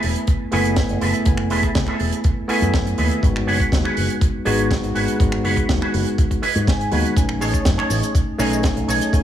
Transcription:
Already playing: A3 B3 E4 G#4 A4 B4 G#5
0.03 E1, open hi-hat
0.16 closed hi-hat
0.27 kick, closed hi-hat
0.51 F#1 A3 B3 E4 G#4 A4 B4 G#5, open hi-hat
0.65 closed hi-hat
0.76 kick, snare, closed hi-hat
0.89 F#1, closed hi-hat
1.01 F#1 E4 G#4 A4 B4, open hi-hat
1.14 closed hi-hat
1.25 F#1 A3 B3 E4 G#5, kick, closed hi-hat
1.37 finger snap
1.50 E1 E4 G#4 A4 B4, open hi-hat
1.63 kick, closed hi-hat
1.75 C#2, kick, snare, closed hi-hat
1.87 E4 G#4 A4 B4, finger snap
2.00 E1, open hi-hat
2.12 closed hi-hat
2.24 kick, closed hi-hat
2.48 A3 B3 E4 G#4 A4 B4 G#5, open hi-hat
2.62 F#2, closed hi-hat
2.74 kick, snare, closed hi-hat
2.87 closed hi-hat
2.98 D#2 E4 G#4 A4 B4, open hi-hat
3.11 closed hi-hat
3.22 G#1 G#3 B3 D#4 F#4, kick, closed hi-hat
3.36 finger snap
3.47 F#1 F#4 G#4 B4, open hi-hat
3.60 muted fingered electric bass stroke, kick, closed hi-hat
3.72 D#2, kick, snare, closed hi-hat
3.84 F#4 G#4 B4, finger snap
3.97 F#1, open hi-hat
4.10 closed hi-hat
4.21 kick, closed hi-hat
4.45 G#1 G#3 B3 D#4 F#4 G#4 B4, open hi-hat
4.59 closed hi-hat
4.71 kick, snare, closed hi-hat
4.84 G#1, closed hi-hat
4.95 G#1 F#4 G#4 B4, open hi-hat
5.08 closed hi-hat
5.19 G#1 G#3 B3 D#4 F#4, kick, closed hi-hat
5.32 finger snap
5.44 F#1 F#4 G#4 B4, open hi-hat
5.57 muted fingered electric bass stroke, kick, closed hi-hat
5.69 D#2, kick, snare, closed hi-hat
5.81 F#4 G#4 B4, finger snap
5.94 F#1, open hi-hat
6.07 closed hi-hat
6.18 kick, closed hi-hat
6.31 kick, closed hi-hat
6.42 F#4 G#4 B4 D#5, open hi-hat
6.55 G#2, closed hi-hat
6.67 G#5, kick, snare, closed hi-hat
6.81 closed hi-hat
6.91 D#2 G#3 B3 D#4 F#4 G#4 B4, open hi-hat
7.06 closed hi-hat
7.16 B1 A3 C#4 D#4 G#5, kick, closed hi-hat, cabasa
7.29 finger snap
7.41 A1 G#4 A4 C#5 D#5, open hi-hat, cabasa
7.54 muted fingered electric bass stroke, kick, closed hi-hat, cabasa
7.65 F#2, kick, snare, closed hi-hat, cabasa
7.77 G#4 A4 C#5 D#5, finger snap
7.90 A1, open hi-hat, cabasa
8.03 closed hi-hat, cabasa
8.15 kick, closed hi-hat, cabasa
8.38 B1 A3 C#4 D#4 G#4 A4 C#5 D#5 G#5, open hi-hat, cabasa
8.51 closed hi-hat, cabasa
8.63 kick, snare, closed hi-hat, cabasa
8.76 B1, closed hi-hat
8.88 B1 G#4 A4 C#5 D#5, open hi-hat, cabasa
9.01 closed hi-hat, cabasa
9.12 B1 A3 C#4 D#4 G#5, kick, closed hi-hat, cabasa

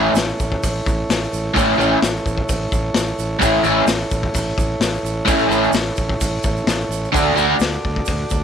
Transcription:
Already playing: A2 E3 A3 C#4 E4 A4 C#5
0.14 A1, snare, open hi-hat, shaker
0.40 A1, kick, shaker
0.52 kick
0.63 A1, kick, open hi-hat, shaker
0.86 A1, kick, shaker
1.09 A1, snare, open hi-hat, shaker
1.24 shaker
1.33 A1, shaker
1.54 A1 A2 E3 A3 C#4 E4, kick, open hi-hat, shaker
1.77 A1 A2 E3 A3 C#4 E4, shaker
2.02 A1, snare, open hi-hat, shaker
2.16 shaker
2.26 A1, kick, shaker
2.38 kick
2.49 A1, kick, open hi-hat, shaker
2.72 A1, kick, shaker
2.94 A1, snare, open hi-hat, shaker
3.07 shaker
3.18 A1, shaker
3.39 A1 A2 E3 A3 C#4 E4 A4 C#5, kick, open hi-hat, shaker
3.63 A1 A2 E3 A3 C#4 E4, shaker
3.86 A1, snare, open hi-hat, shaker
4.01 shaker
4.11 A1, kick, shaker
4.23 kick
4.34 A1, kick, open hi-hat, shaker
4.58 A1, kick, shaker
4.80 A1, snare, open hi-hat, shaker
4.95 shaker
5.03 A1, shaker
5.25 A1 A2 E3 A3 C#4 E4, kick, open hi-hat, shaker
5.38 shaker
5.48 A1 A2 E3 A3 C#4 E4, shaker
5.64 shaker
5.73 A1, snare, open hi-hat, shaker
5.96 A1, kick, shaker
6.09 kick
6.21 A1, kick, open hi-hat, shaker
6.43 A1, kick, shaker
6.57 shaker
6.66 A1, snare, open hi-hat, shaker
6.81 shaker
6.89 A1, shaker
7.05 shaker
7.12 D2 D3 A3 D4 F#4 A4 D5, kick, open hi-hat, shaker
7.35 D2 D3 A3 D4 F#4, shaker
7.60 D2, snare, open hi-hat, shaker
7.72 shaker
7.84 D2, kick
7.96 kick
8.06 D2, kick, open hi-hat, shaker
8.30 D2, kick, shaker

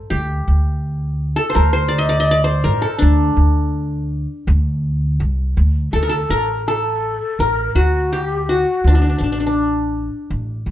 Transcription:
Already playing: A4
0.10 D2 G4
0.48 D2
1.36 A4
1.50 C5
1.55 D2 A#4
1.73 C5
1.88 D5
1.98 D#5
2.09 D5
2.20 D#5
2.31 D5
2.44 C5
2.64 A1 A#4
2.82 A4
2.99 D2 D4
3.37 D2
4.47 D2
5.20 C2
5.57 D2
5.93 D2 A4
6.03 A#4
6.09 A4
6.29 A1 A#4
6.67 A4
7.38 A1 A#4
7.75 D2 F#4
8.13 G4
8.49 F#4
8.84 D2 D4
8.95 D4
9.02 D4
9.09 D4
9.18 A1 D4
9.24 D4
9.32 D4
9.40 D4
9.47 D4
10.30 A1
10.66 D2

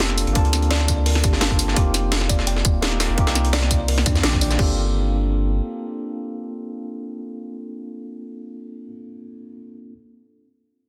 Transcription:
Already playing: F1
0.00 A#3 C4 D4 F4 G4 A4, snare, closed hi-hat
0.09 snare
0.18 closed hi-hat, open hi-hat, tambourine
0.27 G1, closed hi-hat
0.33 A#3 C4 D4 F4, kick, closed hi-hat
0.38 A5
0.45 D2, closed hi-hat
0.53 snare, closed hi-hat, tambourine
0.62 closed hi-hat
0.71 D5, snare, closed hi-hat
0.80 snare
0.88 kick, closed hi-hat, tambourine
1.06 A#4, closed hi-hat, open hi-hat
1.15 snare
1.24 G1 G4, kick, closed hi-hat, tambourine
1.33 snare
1.40 A#3 C4 D4 F4 G4 A5, snare, closed hi-hat
1.51 kick
1.59 closed hi-hat, open hi-hat, tambourine
1.68 snare
1.74 F1 A#3 C4 D#4 F4 G4, kick, closed hi-hat
1.79 G4
1.94 snare, closed hi-hat, tambourine
2.12 snare, closed hi-hat
2.21 snare
2.29 D5, kick, closed hi-hat, tambourine
2.39 snare
2.47 G5, closed hi-hat
2.56 snare
2.65 D#1, kick, closed hi-hat, tambourine
2.81 A#3 C4 D#4 F4 G4, snare, closed hi-hat
2.92 snare
3.00 snare, closed hi-hat, open hi-hat, tambourine
3.09 F1
3.15 A#3 C4 D#4 F4, kick, closed hi-hat
3.20 G4
3.27 C2, snare, closed hi-hat
3.35 snare, closed hi-hat, tambourine
3.45 closed hi-hat
3.53 D5, snare, closed hi-hat
3.62 snare
3.71 kick, closed hi-hat, tambourine
3.88 A#4, closed hi-hat, open hi-hat
3.98 snare
4.06 F2 D4, kick, closed hi-hat, tambourine
4.15 snare, tambourine
4.22 A#1 D#3 A#3 C4 D4 F4 G4, snare, closed hi-hat
4.33 kick, snare
4.41 D5, closed hi-hat, open hi-hat, tambourine
4.51 snare, tambourine
4.55 G1 A#3 C4 D4, kick, crash
4.59 F4 G4 A4

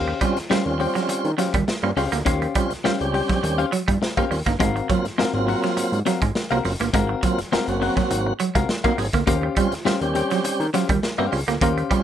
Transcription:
Already playing: D#2 C#4 G4 C5 F5
0.08 muted clean electric guitar stroke
0.21 G3 C4 C#4 F4, kick, closed hi-hat
0.37 D#2, muted clean electric guitar stroke, snare, closed hi-hat
0.50 D#2 G3 C#4 F4 G4 C5 F5, snare
0.65 D#2 G3 C4 C#4 F4, muted clean electric guitar stroke
0.80 C#4 G4 C5 G5, muted clean electric guitar stroke, open hi-hat
0.95 F#3, muted clean electric guitar stroke, snare, closed hi-hat
1.09 D#3, muted clean electric guitar stroke, closed hi-hat
1.24 D#3, closed hi-hat
1.38 F#3 C#4 G4 C5 F5, snare, closed hi-hat
1.54 D#2 G3, muted clean electric guitar stroke, kick, closed hi-hat
1.68 muted clean electric guitar stroke, snare
1.83 G2 G3 A#3 C4 C#4 F4
1.97 C#2 G3 C4 C#4 F4 G4 C5 F5, muted clean electric guitar stroke, open hi-hat
2.12 D2 A#3 C#4 G4, muted clean electric guitar stroke, snare, closed hi-hat
2.25 D#2 A#3 C#4 G4 C5 F5, kick, closed hi-hat
2.42 muted clean electric guitar stroke, closed hi-hat
2.55 G3 C4 C#4 F4, kick, closed hi-hat
2.70 C#2, muted clean electric guitar stroke, snare, closed hi-hat
2.84 C#2 G3 C#4 F4 G4 C5 F5, snare
3.00 C#2 G3 C4 C#4 G4, muted clean electric guitar stroke, closed hi-hat
3.14 C#4 G4 C5 G5, muted clean electric guitar stroke, open hi-hat
3.29 F#3, muted clean electric guitar stroke, kick, snare, closed hi-hat
3.43 D#2, muted clean electric guitar stroke, closed hi-hat
3.58 C#4 G4 C5 F5, closed hi-hat
3.72 F#3, muted clean electric guitar stroke, closed hi-hat
3.88 G2 G3, muted clean electric guitar stroke, kick, closed hi-hat
4.02 muted clean electric guitar stroke, snare
4.17 G3 A#3 C4 C#4 F4 G4 C5 F5, kick, closed hi-hat
4.31 D#2 G3 C4 C#4 F4, muted clean electric guitar stroke, open hi-hat
4.46 G1 A#3 C#4 D#4, muted clean electric guitar stroke, kick, snare, closed hi-hat
4.60 G#1 G#3 C4 F#4 A#4 F5, kick, closed hi-hat
4.76 muted clean electric guitar stroke, closed hi-hat
4.89 F#3 A#3 C4 F4, kick, closed hi-hat
5.05 G#1, muted clean electric guitar stroke, snare, closed hi-hat
5.18 G#1 G#3 C4 D#4 F#4 A#4 F5, snare
5.34 G#1 F#3 A#3 C4 F4, muted clean electric guitar stroke
5.47 C4 F#4 A#4 F#5, muted clean electric guitar stroke, open hi-hat
5.63 F#3, muted clean electric guitar stroke, snare, closed hi-hat
5.77 G#2, muted clean electric guitar stroke, closed hi-hat
5.92 G#2, closed hi-hat
6.06 F#3 C4 F#4 A#4 F5, snare, closed hi-hat
6.22 G#1 G#3, muted clean electric guitar stroke, kick, closed hi-hat
6.35 muted clean electric guitar stroke, snare
6.51 C2 F#3 A#3 C4 F4 F#4 A#4 F5, closed hi-hat
6.65 F#1 F#3 A#3 C4 F4, muted clean electric guitar stroke, open hi-hat
6.80 G1 A#3 C4 F4, muted clean electric guitar stroke, snare, closed hi-hat
6.93 G#1 G#3 C4 F#4 A#4 F5, kick, closed hi-hat
7.09 muted clean electric guitar stroke
7.23 F#3 A#3 C4 F4, kick, closed hi-hat
7.38 F#1, muted clean electric guitar stroke, snare, closed hi-hat
7.52 F#1 G#3 C4 F4 F#4 A#4 F5, snare
7.68 F#1 F#3 A#3 C4 F#4, muted clean electric guitar stroke, closed hi-hat
7.81 C4 F#4 A#4 F#5, muted clean electric guitar stroke, open hi-hat
7.97 F#3, muted clean electric guitar stroke, kick, snare, closed hi-hat
8.10 G#1, muted clean electric guitar stroke, closed hi-hat
8.27 muted clean electric guitar stroke
8.40 F#3, closed hi-hat
8.55 C2 G#3 C4 F#4 A#4 F5, kick, closed hi-hat
8.69 muted clean electric guitar stroke, snare
8.84 F#3 A#3 C4 D#4 F#4 A#4 F5, kick, closed hi-hat
8.98 G#1 F#3 A#3 C4 G#4, muted clean electric guitar stroke, open hi-hat
9.13 D2 A#3 C4 F4, muted clean electric guitar stroke, kick, snare, closed hi-hat
9.27 D#2 A#3 C#4 G4 C5 F5, kick, closed hi-hat
9.43 muted clean electric guitar stroke
9.56 G3 C4 C#4 F4, kick, closed hi-hat
9.72 D#2, muted clean electric guitar stroke, snare, closed hi-hat
9.85 D#2 G3 C#4 F4 G4 C5 F5, snare
10.01 D#2 G3 C4 C#4 G4, muted clean electric guitar stroke, closed hi-hat
10.15 C#4 G4 C5 G5, muted clean electric guitar stroke, closed hi-hat
10.30 F#3, muted clean electric guitar stroke, snare, closed hi-hat
10.44 D#3, muted clean electric guitar stroke, closed hi-hat
10.60 D#3, closed hi-hat
10.74 F#3 C#4 G4 C5 F5, snare, closed hi-hat
10.89 D#2 G3, muted clean electric guitar stroke, kick, closed hi-hat
11.03 muted clean electric guitar stroke, snare
11.18 G2 G3 A#3 C4 C#4 G4 C5 F5
11.32 C#2 G3 C4 C#4 F4, muted clean electric guitar stroke, open hi-hat
11.47 D2 A#3 C#4 G4, muted clean electric guitar stroke, snare, closed hi-hat
11.61 D#2 A#3 C#4 G4 C5 F5, kick, closed hi-hat
11.78 muted clean electric guitar stroke, closed hi-hat
11.90 G3 C4 C#4 F4, kick, closed hi-hat

